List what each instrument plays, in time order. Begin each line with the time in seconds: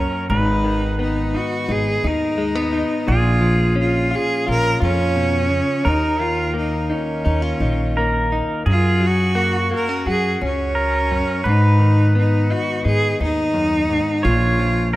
Already playing: clean electric guitar F#2 F#3 A#3 C#4, cello C#4, pedal steel guitar A#4
0.30 upright bass G#1, clean electric guitar G#2, cello D#4, pedal steel guitar B4
0.64 clean electric guitar D#3
0.99 clean electric guitar B3, cello D#4
1.34 clean electric guitar D#4, cello F#4
1.68 upright bass G#1, clean electric guitar D#4, cello G#4
2.04 upright bass D#2, clean electric guitar D#4, cello D#4
2.09 pedal steel guitar A#4
2.38 clean electric guitar G#3
2.55 clean electric guitar B3
2.73 clean electric guitar D#4
3.07 upright bass A#1, clean electric guitar A#2, pedal steel guitar G#4
3.12 cello F4
3.41 clean electric guitar F3
3.76 clean electric guitar C#4
3.80 cello F4
4.11 clean electric guitar F4
4.16 cello G#4
4.46 upright bass A#1, clean electric guitar F4
4.51 cello A#4
4.80 upright bass F2, cello C#4, clean electric guitar F4
5.16 clean electric guitar B2
5.49 clean electric guitar C#3
5.84 clean electric guitar D#2, upright bass D#2, cello D#4, pedal steel guitar A#4
6.20 clean electric guitar D#3, cello F4
6.54 clean electric guitar A#3
6.58 cello D#4
6.90 cello C#4, clean electric guitar D#4
7.25 upright bass D#2, clean electric guitar D#4
7.42 clean electric guitar F4
7.60 upright bass A#1, clean electric guitar D#4
7.97 clean electric guitar A#3, pedal steel guitar A#4
8.32 clean electric guitar D#4
8.66 upright bass F#2, clean electric guitar F#2, pedal steel guitar G#4
8.70 cello F4
9.00 clean electric guitar F#3
9.06 cello F#4
9.35 clean electric guitar A#3, pedal steel guitar F#4
9.71 clean electric guitar A#3
9.75 cello A#4
9.89 clean electric guitar C#4
10.06 upright bass F#2, clean electric guitar F#4, cello G#4
10.41 upright bass C#2, clean electric guitar C#4, cello C#4
10.75 pedal steel guitar A#4
11.11 clean electric guitar F#2
11.44 upright bass G#2, clean electric guitar G#2, pedal steel guitar B4
11.48 cello D#4
11.79 clean electric guitar D#3
12.15 clean electric guitar B3, cello D#4
12.50 clean electric guitar D#4, cello F#4
12.85 upright bass G#2, clean electric guitar D#4, cello G#4
13.20 upright bass D#2, clean electric guitar D#4, cello D#4
13.54 clean electric guitar F#2
13.89 clean electric guitar G#2
14.23 upright bass A#1, clean electric guitar A#2, cello F4, pedal steel guitar C#5
14.59 clean electric guitar F3
14.93 cello F4